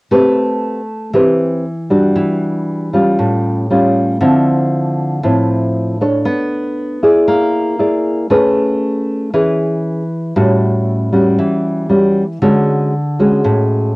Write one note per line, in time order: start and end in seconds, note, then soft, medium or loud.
0.11 1.11 A3 medium
0.11 0.79 C4 medium
0.11 0.80 G4 medium
0.11 0.80 B4 medium
1.13 2.13 E3 medium
1.13 1.64 C4 medium
1.13 1.64 G4 medium
1.13 1.64 B4 medium
1.90 2.88 G3 medium
1.90 2.89 D4 medium
1.90 2.89 F#4 medium
2.16 3.15 E3 medium
2.93 3.65 G3 medium
2.93 3.65 C#4 medium
2.93 3.66 F4 medium
3.19 4.18 A2 medium
3.70 4.17 G3 medium
3.70 4.17 C#4 medium
3.70 4.17 F4 medium
4.20 5.20 D3 medium
4.20 5.19 F3 medium
4.20 5.19 C4 medium
4.20 5.19 E4 medium
5.23 6.23 A2 medium
5.23 5.96 F3 soft
5.23 5.96 C4 medium
5.23 5.96 E4 medium
6.01 6.99 D4 medium
6.01 6.99 A4 medium
6.01 6.99 C#5 medium
6.25 7.25 B3 medium
7.03 7.75 E4 medium
7.03 7.75 G#4 medium
7.03 7.76 D5 medium
7.28 8.28 A#3 medium
7.79 8.26 E4 medium
7.79 8.26 G#4 medium
7.79 8.27 D5 medium
8.30 9.30 A3 medium
8.30 9.29 C#4 medium
8.30 9.29 G#4 soft
8.30 9.29 B4 medium
9.34 10.33 E3 medium
9.34 10.02 C#4 soft
9.34 10.02 G#4 medium
9.34 10.03 B4 medium
10.36 11.36 A2 medium
10.36 11.08 G3 medium
10.36 11.09 C#4 medium
10.36 11.09 F#4 medium
11.13 11.85 G3 medium
11.13 11.86 C#4 medium
11.13 11.86 F#4 medium
11.39 12.38 E3 medium
11.89 12.22 G3 medium
11.89 12.23 C#4 medium
11.89 12.23 F#4 medium
12.42 13.41 D3 medium
12.42 12.92 G#3 medium
12.42 12.92 C#4 medium
12.42 12.93 F#4 medium
13.19 13.91 G#3 medium
13.19 13.92 C#4 medium
13.19 13.92 F#4 medium
13.44 13.96 A2 medium